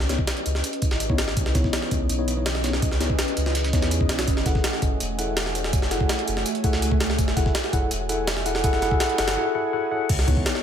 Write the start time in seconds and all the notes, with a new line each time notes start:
Already playing: C#2
0.00 snare
0.09 B3 D#4 E4 C#5, snare, closed hi-hat, tambourine
0.19 kick
0.27 snare, closed hi-hat, tambourine
0.37 closed hi-hat
0.46 C#2, closed hi-hat, tambourine
0.55 snare
0.64 closed hi-hat, tambourine
0.73 closed hi-hat
0.82 kick, closed hi-hat, tambourine
0.91 G#1, snare
1.00 closed hi-hat, tambourine
1.09 B3 D#4 E4 C#5, kick
1.18 snare, closed hi-hat, tambourine
1.28 snare
1.37 C#2, kick, closed hi-hat, tambourine
1.46 snare
1.55 B3 D#4 E4 C#5, kick, snare, closed hi-hat, tambourine
1.64 kick, snare
1.73 snare, closed hi-hat, tambourine
1.82 snare
1.91 C#2, kick, closed hi-hat, tambourine
2.09 B1, closed hi-hat, tambourine
2.19 B3 D#4 E4 C#5
2.28 closed hi-hat, tambourine
2.37 B3 D#4 E4 C#5
2.46 snare, closed hi-hat, open hi-hat
2.55 snare
2.64 B3 D#4 E4 C#5, snare, closed hi-hat, tambourine
2.73 snare
2.82 C#2, kick, closed hi-hat, tambourine
2.92 snare
3.00 B3 D#4 E4 C#5, snare, closed hi-hat, tambourine
3.10 kick
3.19 snare, closed hi-hat, tambourine
3.28 closed hi-hat
3.37 C#2, closed hi-hat, tambourine
3.46 snare
3.55 snare, closed hi-hat, tambourine
3.64 snare, tambourine
3.73 E2 B3 D#4 E4 C#5, kick, snare, closed hi-hat, tambourine
3.82 snare, tambourine
3.91 closed hi-hat, tambourine
4.01 kick
4.09 B1, snare, closed hi-hat, tambourine
4.19 snare, closed hi-hat
4.28 F#1, kick, closed hi-hat, tambourine
4.37 snare
4.46 E4 G#4 A4 F#5, kick, snare, closed hi-hat, tambourine
4.55 kick, snare
4.64 snare, closed hi-hat, tambourine
4.73 snare
4.82 F#1, kick, closed hi-hat, tambourine
5.00 E1, closed hi-hat, tambourine
5.19 E4 G#4 A4 F#5, closed hi-hat, tambourine
5.37 snare, closed hi-hat, open hi-hat
5.46 snare
5.55 closed hi-hat, tambourine
5.64 snare
5.73 F#1, kick, closed hi-hat, tambourine
5.82 snare
5.91 E4 G#4 A4 F#5, snare, closed hi-hat, tambourine
6.00 kick
6.09 snare, closed hi-hat, tambourine
6.19 closed hi-hat
6.28 F#1, closed hi-hat, tambourine
6.37 snare
6.46 closed hi-hat, tambourine
6.55 closed hi-hat
6.64 E4 G#4 A4 F#5, kick, closed hi-hat, tambourine
6.73 C#2, snare
6.82 closed hi-hat, tambourine
6.91 kick
7.00 snare, closed hi-hat, tambourine
7.10 snare
7.19 F#1, kick, closed hi-hat, tambourine
7.28 snare
7.37 E4 G#4 A4 F#5, kick, snare, closed hi-hat, tambourine
7.46 kick, snare
7.55 snare, closed hi-hat, tambourine
7.64 snare
7.73 F#1 E4 G#4 A4 F#5, kick, closed hi-hat, tambourine
7.91 E1, closed hi-hat, tambourine
8.09 E4 G#4 A4 F#5, closed hi-hat, tambourine
8.27 snare, closed hi-hat, open hi-hat
8.37 snare
8.46 E4 G#4 A4 F#5, closed hi-hat, tambourine
8.55 snare
8.64 F#1 E4 G#4 A4 F#5, kick, closed hi-hat, tambourine
8.73 snare
8.82 E4 G#4 A4 F#5, snare, closed hi-hat
8.91 kick
9.00 E4 G#4 A4 F#5, snare, closed hi-hat, tambourine
9.09 closed hi-hat
9.18 F#1 E4 G#4 A4 F#5, snare, closed hi-hat, tambourine
9.28 snare, closed hi-hat
9.37 E4 G#4 A4 F#5
9.55 E4 G#4 A4 F#5
9.73 E4 G#4 A4 F#5
9.91 E4 G#4 A4 F#5
10.09 C#2, kick, closed hi-hat, crash
10.19 snare
10.28 B3 D#4 E4 C#5, kick, closed hi-hat
10.37 kick
10.46 snare, closed hi-hat
10.55 snare